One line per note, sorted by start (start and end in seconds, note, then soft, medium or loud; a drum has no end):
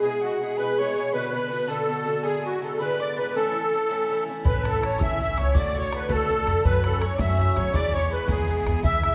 0.01 0.21 B2 medium
0.01 0.23 G#3 medium
0.01 0.23 E4 medium
0.01 0.23 G#4 loud
0.01 0.23 G#5 medium
0.06 0.24 G#4 medium
0.21 0.40 B2 soft
0.21 0.41 G#3 medium
0.21 0.41 E4 medium
0.21 0.39 F#4 medium
0.21 0.59 F#5 medium
0.25 0.42 G#4 medium
0.41 0.57 B2 medium
0.41 0.58 G#3 medium
0.41 0.59 E4 medium
0.41 0.57 G#4 medium
0.41 0.60 G#4 medium
0.57 0.78 B2 medium
0.57 0.79 G#3 medium
0.57 0.79 E4 medium
0.57 0.79 G#4 medium
0.57 0.79 B4 medium
0.57 0.80 B5 medium
0.78 0.95 B2 medium
0.78 0.96 G#3 medium
0.78 0.97 E4 medium
0.78 1.11 C#5 medium
0.78 0.95 C#6 medium
0.82 0.98 G#4 medium
0.95 1.12 B2 medium
0.95 1.13 G#3 medium
0.95 1.14 E4 medium
0.95 1.14 C#6 medium
0.99 1.15 G#4 medium
1.13 1.32 B2 medium
1.13 1.33 D3 medium
1.13 1.34 B3 medium
1.13 1.34 F#4 medium
1.13 1.32 B4 loud
1.13 1.32 B5 medium
1.33 1.49 B2 medium
1.33 1.50 D3 medium
1.33 1.51 B3 medium
1.33 1.52 F#4 medium
1.33 1.70 B4 medium
1.33 1.49 B5 medium
1.50 1.66 B2 medium
1.50 1.67 D3 medium
1.50 1.68 B3 medium
1.50 1.69 F#4 medium
1.50 1.69 B5 medium
1.68 1.86 B2 medium
1.68 1.88 D3 medium
1.68 1.88 B3 medium
1.68 1.89 F#4 medium
1.68 2.26 A4 medium
1.68 2.25 A5 medium
1.87 2.04 B2 medium
1.87 2.05 D3 medium
1.87 2.06 B3 medium
1.87 2.07 F#4 medium
2.05 2.23 B2 medium
2.05 2.22 D3 medium
2.05 2.23 B3 medium
2.05 2.25 F#4 medium
2.23 2.42 G#2 medium
2.23 2.43 D3 medium
2.23 2.44 B3 medium
2.23 2.45 E4 medium
2.23 2.43 G#4 loud
2.23 2.54 G#5 medium
2.44 2.59 G#2 medium
2.44 2.61 D3 soft
2.44 2.62 B3 medium
2.44 2.62 E4 medium
2.44 2.63 F#4 medium
2.61 2.78 G#2 medium
2.61 2.79 D3 medium
2.61 2.80 B3 medium
2.61 2.80 E4 medium
2.61 2.79 A4 medium
2.79 2.97 G#2 medium
2.79 2.98 D3 medium
2.79 3.00 B3 medium
2.79 3.00 E4 medium
2.79 3.00 B4 loud
2.79 3.02 B5 medium
2.99 3.15 G#2 medium
2.99 3.17 D3 medium
2.99 3.17 B3 medium
2.99 3.18 E4 medium
2.99 3.18 D5 medium
2.99 3.19 D6 medium
3.16 3.34 G#2 medium
3.16 3.35 D3 medium
3.16 3.35 B3 medium
3.16 3.36 E4 medium
3.16 3.36 B4 medium
3.16 3.35 B5 medium
3.35 3.54 A2 medium
3.35 3.55 E3 medium
3.35 3.55 C#4 medium
3.35 3.56 E4 medium
3.35 4.24 A4 loud
3.35 4.24 A5 medium
3.55 3.71 A2 medium
3.55 3.72 E3 medium
3.55 3.73 C#4 medium
3.55 3.74 E4 medium
3.72 3.88 A2 soft
3.72 3.89 E3 medium
3.72 3.90 C#4 medium
3.72 3.90 E4 soft
3.89 4.07 A2 medium
3.89 4.09 E3 medium
3.89 4.10 C#4 medium
3.89 4.10 E4 medium
4.09 4.25 A2 medium
4.09 4.27 E3 medium
4.09 4.28 C#4 medium
4.09 4.29 E4 medium
4.27 4.42 A2 medium
4.27 4.43 E3 medium
4.27 4.44 C#4 medium
4.27 4.44 E4 medium
4.44 4.88 A1 medium
4.44 4.62 A2 medium
4.44 4.64 E3 medium
4.44 4.64 C#4 medium
4.44 4.65 E4 medium
4.44 4.67 B4 medium
4.44 4.65 B5 medium
4.44 bodhran medium
4.63 4.79 A2 medium
4.63 4.80 E3 medium
4.63 4.81 C#4 medium
4.63 4.82 E4 medium
4.63 5.00 A5 medium
4.63 bodhran medium
4.68 4.83 A4 medium
4.80 4.97 A2 medium
4.80 4.98 E3 medium
4.80 4.99 C#4 medium
4.80 4.99 E4 medium
4.80 bodhran medium
4.85 5.02 C#5 medium
4.98 5.29 A1 loud
4.98 5.17 A2 medium
4.98 5.19 E3 medium
4.98 5.19 C#4 medium
4.98 5.20 E4 medium
4.98 5.18 E6 medium
4.98 bodhran medium
5.03 5.21 E5 medium
5.19 5.36 A2 medium
5.19 5.37 E3 medium
5.19 5.38 C#4 medium
5.19 5.38 E4 medium
5.19 5.39 E5 medium
5.19 5.39 E6 medium
5.19 bodhran soft
5.37 5.51 C#2 medium
5.37 5.53 A2 medium
5.37 5.55 E3 medium
5.37 5.56 C#4 medium
5.37 5.56 E4 medium
5.37 5.55 C#5 medium
5.37 5.56 C#6 medium
5.37 bodhran medium
5.54 5.98 D2 loud
5.54 5.73 A2 medium
5.54 5.74 D3 medium
5.54 5.75 A3 medium
5.54 5.75 F#4 loud
5.54 5.67 D6 medium
5.54 bodhran medium
5.59 5.77 D5 medium
5.67 5.77 D6 medium
5.74 5.90 A2 medium
5.74 5.92 D3 medium
5.74 5.93 A3 medium
5.74 5.94 F#4 medium
5.74 6.10 C#6 medium
5.79 5.95 C#5 loud
5.91 6.08 A2 medium
5.91 6.08 D3 medium
5.91 6.10 A3 medium
5.91 6.10 F#4 medium
5.91 bodhran medium
5.95 6.12 B4 medium
6.09 6.39 D2 loud
6.09 6.27 A2 medium
6.09 6.28 D3 medium
6.09 6.30 A3 medium
6.09 6.30 F#4 medium
6.09 6.62 A4 loud
6.09 6.67 A5 medium
6.09 bodhran medium
6.29 6.45 A2 medium
6.29 6.46 D3 medium
6.29 6.47 A3 medium
6.29 6.48 F#4 medium
6.29 bodhran soft
6.46 6.61 F2 medium
6.46 6.62 A2 medium
6.46 6.64 D3 medium
6.46 6.65 A3 medium
6.46 6.65 F#4 medium
6.46 bodhran medium
6.64 7.08 F#2 medium
6.64 6.81 A2 medium
6.64 6.83 F#3 medium
6.64 6.84 C#4 medium
6.64 6.85 F#4 medium
6.64 6.83 B4 loud
6.64 7.04 B5 medium
6.64 bodhran medium
6.83 6.99 A2 medium
6.83 7.01 F#3 medium
6.83 7.02 C#4 medium
6.83 7.03 F#4 medium
6.83 7.03 A4 medium
6.83 bodhran medium
7.01 7.18 A2 medium
7.01 7.19 F#3 medium
7.01 7.20 C#4 medium
7.01 7.20 F#4 medium
7.01 7.16 C#5 medium
7.01 7.22 C#6 medium
7.01 bodhran medium
7.15 7.19 D5 medium
7.19 7.49 F#2 loud
7.19 7.36 A2 medium
7.19 7.38 F#3 medium
7.19 7.39 C#4 medium
7.19 7.40 F#4 medium
7.19 7.38 E5 medium
7.19 7.38 E6 medium
7.19 bodhran medium
7.38 7.54 A2 medium
7.38 7.55 F#3 medium
7.38 7.56 C#4 medium
7.38 7.57 F#4 medium
7.38 7.56 E5 medium
7.38 7.58 E6 medium
7.38 bodhran soft
7.56 7.70 F#2 loud
7.56 7.72 A2 medium
7.56 7.74 F#3 medium
7.56 7.75 C#4 medium
7.56 7.75 F#4 medium
7.56 7.75 C#5 medium
7.56 7.76 C#6 medium
7.56 bodhran medium
7.73 8.17 E2 loud
7.73 7.91 G#2 medium
7.73 7.92 E3 medium
7.73 7.94 B3 medium
7.73 7.94 E4 medium
7.73 7.93 D5 loud
7.73 7.95 D6 medium
7.73 bodhran medium
7.92 8.09 G#2 medium
7.92 8.10 E3 medium
7.92 8.11 B3 medium
7.92 8.12 E4 medium
7.92 8.12 C#5 loud
7.92 8.07 C#6 medium
8.07 8.26 G#2 medium
8.07 8.13 C#6 medium
8.11 8.27 E3 medium
8.11 8.28 B3 medium
8.11 8.28 E4 medium
8.11 8.30 B4 medium
8.11 8.28 B5 medium
8.27 8.58 E2 loud
8.27 8.46 G#2 medium
8.27 8.47 E3 medium
8.27 8.48 B3 medium
8.27 8.49 E4 medium
8.27 8.81 G#4 medium
8.27 8.79 G#5 medium
8.27 bodhran medium
8.47 8.64 G#2 medium
8.47 8.66 E3 medium
8.47 8.66 B3 medium
8.47 8.67 E4 medium
8.47 bodhran soft
8.65 8.80 E2 loud
8.65 8.81 G#2 medium
8.65 8.82 E3 medium
8.65 8.83 B3 medium
8.65 8.84 E4 medium
8.65 bodhran medium
8.82 9.15 E2 medium
8.82 9.00 G#2 medium
8.82 9.02 E3 medium
8.82 9.03 B3 medium
8.82 9.04 E4 medium
8.82 9.03 E5 loud
8.82 9.02 E6 medium
8.82 bodhran medium
9.02 9.15 G#2 medium
9.02 9.15 E3 medium
9.02 9.15 B3 medium
9.02 9.15 E4 medium
9.02 9.15 E5 medium
9.02 9.15 E6 medium
9.02 bodhran medium